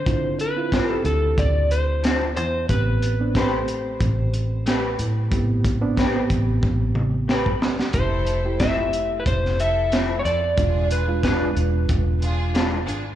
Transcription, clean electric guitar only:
X:1
M:4/4
L:1/8
Q:"Swing 16ths" 1/4=91
K:Am
V:1 name="Clean electric guitar"
z2 [D,F,CE] z3 [D,F,CE] z | z2 [A,CGB] z3 [A,CGB] z | z2 [A,CGB] z3 [A,CGB] z | z2 [F,A,CE] z3 [F,A,CE] z |
z2 [E,^G,DF] z3 [E,G,DF] z |]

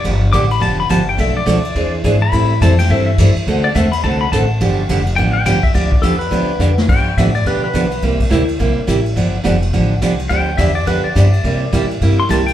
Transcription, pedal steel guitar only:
X:1
M:4/4
L:1/8
Q:"Swing" 1/4=211
K:Gmix
V:1 name="Pedal steel guitar"
z2 d' b a b a g | e d4 z2 b- | b2 a g e e2 z | z d e b a b a2- |
a2 z2 g g g e | d2 A B4- B | g2 e d B B3 | z8 |
z8 | g2 e d B d3- | d3 z2 c' a g |]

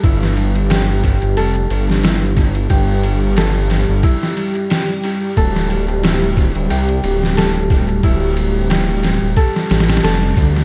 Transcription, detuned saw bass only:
X:1
M:4/4
L:1/16
Q:"Swing 16ths" 1/4=90
K:Gdor
V:1 name="Detuned saw bass" clef=bass
G,,,6- G,,, G,,, F,,,2 G,,,6 | G,,,6- G,,, G,,, z8 | D,,,6- D,,, D,,, C,,2 D,,,6 | D,,,6- D,,, D,,, z2 A,,,2 F,,,2 D,,2 |]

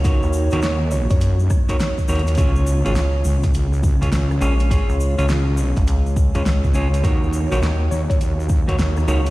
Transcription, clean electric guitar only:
X:1
M:4/4
L:1/16
Q:"Swing 16ths" 1/4=103
K:Ebm
V:1 name="Clean electric guitar"
[EGBd]3 [EGBd] z6 z [EGBd] z2 [EGBd] z | [DFAd]3 [DFAd] z6 z [DFAd] z2 [DFAd] z | [DFAd]3 [DFAd] z6 z [DFAd] z2 [DFAd] z | [EGBd]3 [EGBd] z6 z [EGBd] z2 [EGBd] z |]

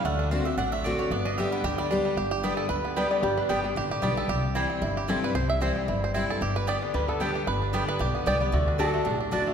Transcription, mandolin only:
X:1
M:4/4
L:1/8
Q:"Swing" 1/4=226
K:G
V:1 name="Mandolin"
f A c e f e d ^c | d _e =e f g d z2 | z2 [B,Gdg] z3 [B,Gdg] z | z2 [B,Gdg] z3 [B,Gdg] z |
z2 [CEcg] z3 [CEcg] z | z2 [CEcg] z3 [CEcg] z | z2 [B,Gdg] z3 [B,Gdg] z | z2 [B,Gdg] z3 [B,Gdg] z |
z2 [A,Fda] z3 [A,Fda] z |]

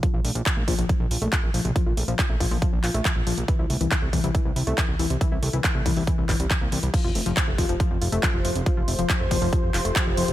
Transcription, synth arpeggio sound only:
X:1
M:4/4
L:1/16
Q:1/4=139
K:F
V:1 name="Synth arpeggio sound" clef=bass
F, F A, F, F, A, F, F, F, F, F A, F, F,, F, C, | F, F A, F, F, A, F, F, F, F, F A, F, F,, F, C, | E, E A, E, E, A, E, E, E, E, E A, E, E,, E, C, | E, E A, E, E, A, E, E, E, E, E, G, E, B, E, G, |
F, F A, F, F, A, F, F, F, F, F A, F, F,, F, C, | F, F A, F, F, A, F, F, F, F, F A, F, F,, F, C, |]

